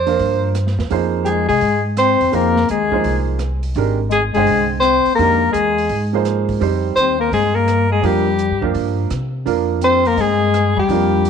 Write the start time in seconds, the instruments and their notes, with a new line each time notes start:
Already playing: upright bass F2, soprano saxophone C5
0.06 upright piano F3 A#3 D4 F4 A#4, open hi-hat
0.19 upright bass G2, open hi-hat
0.55 cross-stick, closed hi-hat
0.67 snare
0.78 upright bass E2, snare
0.90 upright bass F2, upright piano F3 A#3 D#4 G#4 C5, open hi-hat
1.24 bass clarinet G3 G#3, soprano saxophone G4 G#4, closed hi-hat
1.49 upright bass C3, bass clarinet G#3, soprano saxophone G#4, open hi-hat
1.61 upright bass G#2, open hi-hat
1.97 bass clarinet C4, soprano saxophone C5, cross-stick, closed hi-hat
2.21 upright bass E2, open hi-hat
2.32 upright bass F2, upright piano F3 A#3 D#4 G#4 C5, bass clarinet A#3, soprano saxophone A#4, open hi-hat
2.56 snare
2.69 upright bass D#2, bass clarinet G#3, soprano saxophone G#4, closed hi-hat
2.91 upright piano F3 A#3 D#4 G#4 C5, kick
3.04 upright bass C2, open hi-hat
3.39 cross-stick, closed hi-hat
3.63 open hi-hat
3.75 upright bass G#1, upright piano D#3 G#3 D4 G4 A#4, open hi-hat
4.09 bass clarinet G#3, soprano saxophone G#4, closed hi-hat
4.32 upright bass G1, upright piano D3 G#3 G5, bass clarinet G#3, soprano saxophone G#4, open hi-hat
4.37 upright piano C5 D#5
4.47 upright bass C2, open hi-hat
4.79 bass clarinet C4, soprano saxophone C5, cross-stick, closed hi-hat
5.05 muted upright bass stroke, open hi-hat
5.14 bass clarinet A#3, soprano saxophone A#4
5.19 upright bass F2, upright piano D#3 G#3 D4 G4 A#4, open hi-hat
5.51 upright bass E2, bass clarinet G#3, soprano saxophone G#4, closed hi-hat
5.78 open hi-hat
5.89 upright bass G#2, open hi-hat
6.13 upright piano F3 A#3 D#4 G#4 C5
6.25 cross-stick, closed hi-hat
6.49 kick, open hi-hat
6.60 upright bass F2, upright piano G3 C4 D#4 G4 C5, open hi-hat
6.96 upright bass D#2, bass clarinet C4, soprano saxophone C5, closed hi-hat
7.19 bass clarinet A#3, soprano saxophone A#4
7.32 upright bass G2, bass clarinet G#3, soprano saxophone G#4, open hi-hat
7.55 bass clarinet A#3, soprano saxophone A#4
7.68 cross-stick, closed hi-hat
7.90 bass clarinet G#3, soprano saxophone G#4
8.02 upright bass F2, upright piano F3 A#3 D4 F4 A#4, bass clarinet G3, soprano saxophone G4, open hi-hat
8.39 closed hi-hat
8.51 upright bass G2
8.61 upright bass F#2, upright piano F3 A#3 D4 F4 A#4, kick
8.74 upright bass G2, open hi-hat
9.10 upright bass C3, cross-stick, closed hi-hat
9.45 upright bass F2, upright piano F3 A#3 D4 F4 A#4, open hi-hat
9.81 bass clarinet C4, soprano saxophone C5, closed hi-hat
10.05 bass clarinet A#3, soprano saxophone A#4, open hi-hat
10.17 upright bass G2, bass clarinet G#3, soprano saxophone G#4, open hi-hat
10.54 cross-stick, closed hi-hat
10.76 upright bass E2, bass clarinet G3, soprano saxophone G4
10.88 upright bass F2, upright piano F3 A#3 D4 F4 A#4, open hi-hat
11.25 closed hi-hat